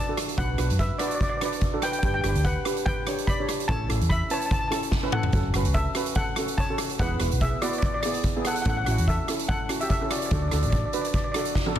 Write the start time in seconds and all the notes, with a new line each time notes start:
Already playing: D5 A5
0.09 D4 F#4 A4
0.17 cross-stick, closed hi-hat
0.29 closed hi-hat
0.38 B1 D4 F#4 B4 F#5, kick, closed hi-hat
0.58 B1 D4 F#4 B4, cross-stick, closed hi-hat
0.70 F#2, closed hi-hat
0.79 B4 E5, kick, closed hi-hat
0.98 D4 F#4 B4 D5, cross-stick, closed hi-hat
1.07 D5, closed hi-hat
1.15 D5
1.21 D5, kick, closed hi-hat
1.29 D5
1.38 D5, cross-stick, closed hi-hat
1.42 D4 F#4 B4 D5
1.52 closed hi-hat
1.61 kick, closed hi-hat
1.74 D4 F#4 A4
1.82 B4 G5, cross-stick, closed hi-hat
1.92 G5, closed hi-hat
1.99 D4 B4 G5, closed hi-hat
2.03 G1 G4 G5, kick
2.14 G5
2.21 G1 D4 G4 G5, cross-stick, closed hi-hat
2.26 B4 G5
2.35 D2, closed hi-hat
2.45 B4 F#5, kick, closed hi-hat
2.65 D4 G4 B4, cross-stick, closed hi-hat
2.77 closed hi-hat
2.86 B4 G5, kick, closed hi-hat
3.07 D4 G4 C#5, cross-stick, closed hi-hat
3.18 closed hi-hat
3.27 D5 B5, kick, closed hi-hat
3.40 D4 G4 C#5
3.49 cross-stick, closed hi-hat
3.60 closed hi-hat
3.68 A1 C#4 E4 A4 C#5 A5, kick
3.89 A1 C#4 E4 A4, cross-stick, closed hi-hat
4.01 E2, closed hi-hat
4.10 E5 B5, kick, closed hi-hat
4.30 C#4 E4 B4 C#5 A5, closed hi-hat
4.40 A5, closed hi-hat
4.46 A5
4.51 A5, kick, closed hi-hat
4.59 A5
4.68 C#4 E4 A4 A5
4.72 A5, cross-stick, closed hi-hat
4.83 closed hi-hat
4.92 kick, snare
5.03 C#4 E4 B4
5.12 A4 F#5, mid tom
5.23 floor tom
5.32 F#1 C#4 F#4 A4, kick, closed hi-hat
5.54 F#1 C#4 F#4 B4, cross-stick, closed hi-hat
5.65 C#2, closed hi-hat
5.74 A4 E5, kick, closed hi-hat
5.95 C#4 F#4 B4, cross-stick, closed hi-hat
6.06 closed hi-hat
6.15 A4 F#5, kick, closed hi-hat
6.36 C#4 F#4 A4, cross-stick, closed hi-hat
6.48 closed hi-hat
6.58 C#5 A5, kick, closed hi-hat
6.70 C#4 F#4 A4
6.78 cross-stick, closed hi-hat
6.89 closed hi-hat
6.99 E1 B3 E4 G#4 B4 F#5, kick, closed hi-hat
7.20 E1 B3 E4 B4, cross-stick, closed hi-hat
7.31 B1, closed hi-hat
7.41 G#4 E5, kick, closed hi-hat
7.62 B3 E4 F#4 B4 D5, cross-stick, closed hi-hat
7.70 D5, closed hi-hat
7.78 D5, closed hi-hat
7.83 D5, kick
7.94 D5
8.01 D5, cross-stick, closed hi-hat
8.05 B3 E4 G#4 D5
8.14 closed hi-hat
8.23 kick, closed hi-hat
8.36 B3 E4 G#4
8.45 A4 F#5, cross-stick, closed hi-hat
8.55 F#5, closed hi-hat
8.62 F#5, kick, closed hi-hat
8.66 A1 C#4 E4 A4 F#5
8.77 F#5
8.85 A1 C#4 E4 F#4 F#5, cross-stick, closed hi-hat
8.91 F#5
8.98 E2, closed hi-hat
9.08 A4 E5, kick, closed hi-hat
9.28 C#4 E4 A4, cross-stick, closed hi-hat
9.39 closed hi-hat
9.48 A4 F#5, kick
9.69 C#4 E4 F#4, cross-stick, closed hi-hat
9.81 G4 E5, closed hi-hat
9.90 A4 E5, kick, closed hi-hat
10.01 C#4 E4 A4
10.11 F#4 D5, cross-stick, closed hi-hat
10.19 D5, closed hi-hat
10.26 D5
10.31 D2 D4 F#4 A4 D5, kick, closed hi-hat
10.42 D5
10.48 D5, cross-stick, closed hi-hat
10.52 D2 D4 F#4 A4 D5
10.62 A1 D5, closed hi-hat
10.70 D5, kick, closed hi-hat
10.78 D5
10.86 D5
10.93 D4 F#4 B4 D5, closed hi-hat
11.01 D5, closed hi-hat
11.07 D5
11.14 D5, kick, closed hi-hat
11.24 D5
11.32 D4 F#4 D5, cross-stick, closed hi-hat
11.36 A4 D5
11.45 closed hi-hat
11.55 kick, snare
11.66 D4 F#4 A4, high tom
11.76 mid tom